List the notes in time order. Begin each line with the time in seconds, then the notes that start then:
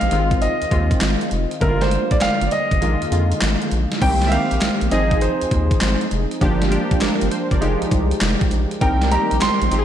Already playing: D#3 A#3 C4 G4 F5
0.01 A#1, closed hi-hat
0.11 G#1 D#3 G#3 C4 F4, closed hi-hat
0.31 kick, closed hi-hat
0.42 D#5, closed hi-hat
0.62 D#2, closed hi-hat
0.71 D#2 D#3 G#3 C4 F4, kick, closed hi-hat
0.91 kick, closed hi-hat
1.01 G#1, snare, clap, closed hi-hat
1.21 closed hi-hat
1.31 F1, closed hi-hat
1.51 closed hi-hat
1.61 G1 D3 G3 A#3 E4 A#4, kick, closed hi-hat
1.68 F4
1.81 C5, snare, closed hi-hat
1.91 closed hi-hat
2.11 A#1 D5, kick, closed hi-hat
2.21 G1 F5, snare, clap, closed hi-hat
2.41 G1, closed hi-hat
2.47 D5
2.51 D#5, closed hi-hat
2.71 G1, kick, closed hi-hat
2.81 A#1 D#3 G#3 A#3 F4, closed hi-hat
3.02 F2, closed hi-hat
3.11 F2 D3 G#3 A#3 F4, closed hi-hat
3.18 D#3
3.32 closed hi-hat
3.41 G#1, snare, clap, closed hi-hat
3.62 closed hi-hat
3.71 A#1, closed hi-hat
3.92 snare, closed hi-hat
4.01 C2 D#3 A#3 C4 G4 G5, kick, closed hi-hat, crash
4.22 snare, closed hi-hat
4.27 D#3 E5
4.31 A#3 C4 G4 F5, closed hi-hat
4.51 A#1, closed hi-hat
4.61 A#1, snare, clap, closed hi-hat
4.81 A#1, closed hi-hat
4.91 G#1 F3 C4 D#4 G#4 D#5, closed hi-hat
5.11 kick, closed hi-hat
5.21 C5, closed hi-hat
5.41 D#2, closed hi-hat
5.51 D#2, kick, closed hi-hat
5.71 kick, closed hi-hat
5.81 G#1, snare, clap, closed hi-hat
6.01 closed hi-hat
6.11 F1, closed hi-hat
6.31 closed hi-hat
6.41 G1 F3 A#3 D4 G4, kick, closed hi-hat
6.62 snare, closed hi-hat
6.71 F3 A#3 D4 G4, closed hi-hat
6.91 A#1, kick, closed hi-hat
7.01 G1 G4 A#4, snare, clap, closed hi-hat
7.21 G1, closed hi-hat
7.31 C5, closed hi-hat
7.51 G1 A#4 D5, kick, closed hi-hat
7.61 F1 F3 G#3 D#4 G4, closed hi-hat
7.82 C2, closed hi-hat
7.91 C2, kick, closed hi-hat
8.11 closed hi-hat
8.21 F1, snare, clap, closed hi-hat
8.41 kick, closed hi-hat
8.51 A#1, closed hi-hat
8.71 closed hi-hat
8.81 C2 D#3 G3 A#3 C4 D#4 G4 A#4 G5, kick, closed hi-hat
9.02 snare, closed hi-hat
9.11 G3 C4 D#4 G4 A#5, closed hi-hat
9.31 A#1, closed hi-hat
9.41 A#1 C6, snare, clap, closed hi-hat
9.62 A#1, closed hi-hat
9.71 G#1 F3 G#3 C4 D#4 F4 G4, closed hi-hat
9.79 G#4